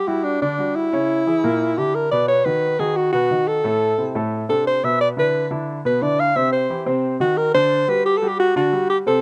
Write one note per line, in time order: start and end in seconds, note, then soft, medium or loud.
0.07 0.35 G3 medium
0.07 0.25 E4 medium
0.07 0.35 F#4 medium
0.07 0.35 G4 medium
0.24 0.41 D4 medium
0.42 0.55 D3 medium
0.42 0.55 D4 medium
0.42 0.77 D4 medium
0.42 0.56 D5 medium
0.58 0.86 G3 medium
0.58 0.86 F#4 medium
0.58 0.87 G4 medium
0.76 1.79 E4 medium
0.93 1.20 C#3 medium
0.93 1.20 C#4 medium
0.93 1.21 C#5 medium
1.27 1.40 E3 medium
1.27 1.41 E4 medium
1.27 1.41 G#4 medium
1.44 1.71 A#2 medium
1.44 1.71 A#3 medium
1.44 1.72 A#4 medium
1.78 2.05 D3 medium
1.78 2.05 D4 medium
1.78 2.06 E4 medium
1.78 1.96 G4 medium
1.95 2.11 A#4 medium
2.11 2.39 B2 medium
2.11 2.40 B3 medium
2.11 2.40 B4 medium
2.11 2.27 D5 medium
2.28 2.46 C#5 loud
2.45 2.73 D#3 medium
2.45 2.73 D#4 medium
2.45 2.74 F#4 medium
2.45 2.81 B4 medium
2.79 3.07 D#3 medium
2.79 3.07 D#4 medium
2.79 3.07 F#4 medium
2.79 2.98 G#4 medium
2.96 3.12 F#4 medium
3.13 3.27 B2 medium
3.13 3.27 B3 medium
3.13 3.49 F#4 medium
3.13 3.27 B4 medium
3.31 3.58 D#3 medium
3.31 3.59 D#4 medium
3.31 3.59 F#4 medium
3.47 4.22 A4 medium
3.64 3.92 A2 medium
3.64 3.92 A3 medium
3.64 3.92 A4 medium
3.98 4.12 C3 medium
3.98 4.12 C4 medium
3.98 4.12 E4 medium
4.15 4.43 A2 medium
4.15 4.43 A3 medium
4.15 4.43 A4 medium
4.49 4.77 C3 medium
4.49 4.77 C4 medium
4.49 4.77 D4 medium
4.49 4.65 A4 medium
4.67 4.86 C5 medium
4.83 5.11 B2 medium
4.83 5.11 B3 medium
4.83 5.11 B4 medium
4.83 5.00 E5 medium
5.01 5.08 D5 medium
5.17 5.45 D3 medium
5.17 5.45 D4 medium
5.17 5.45 E4 medium
5.17 5.50 B4 medium
5.51 5.78 D3 medium
5.51 5.79 D4 medium
5.51 5.79 E4 medium
5.85 5.99 B2 medium
5.85 5.99 B3 medium
5.85 5.99 B4 medium
5.85 6.04 B4 medium
6.02 6.30 D3 medium
6.02 6.30 D4 medium
6.02 6.30 E4 medium
6.02 6.21 D5 medium
6.20 6.37 F5 loud
6.36 6.63 C3 medium
6.36 6.64 C4 medium
6.36 6.64 C5 medium
6.36 6.52 E5 loud
6.52 6.84 C5 medium
6.70 6.84 E3 medium
6.70 6.84 E4 medium
6.70 6.84 G4 medium
6.86 7.14 C3 medium
6.86 7.14 C4 medium
6.86 7.14 C5 medium
7.20 7.48 D#3 medium
7.20 7.48 D#4 medium
7.20 7.48 F#4 medium
7.20 7.39 F#4 medium
7.37 7.54 A#4 loud
7.54 7.82 D3 medium
7.54 7.82 D4 medium
7.54 7.91 C5 loud
7.54 7.83 D5 medium
7.88 8.16 G3 medium
7.88 8.16 F#4 medium
7.88 8.16 G4 medium
7.88 8.05 B4 loud
8.06 8.19 G4 medium
8.17 8.30 A4 medium
8.22 8.50 G3 medium
8.22 8.50 F#4 medium
8.22 8.50 G4 medium
8.28 8.39 G4 medium
8.40 8.55 F#4 loud
8.56 8.70 D3 medium
8.56 8.70 D4 medium
8.56 8.88 F#4 medium
8.56 8.70 D5 medium
8.72 9.00 G3 medium
8.72 9.01 F#4 medium
8.72 9.01 G4 medium
8.90 8.98 G4 medium
9.06 9.21 C3 medium
9.06 9.21 C4 medium
9.06 9.21 A4 medium
9.06 9.21 C5 medium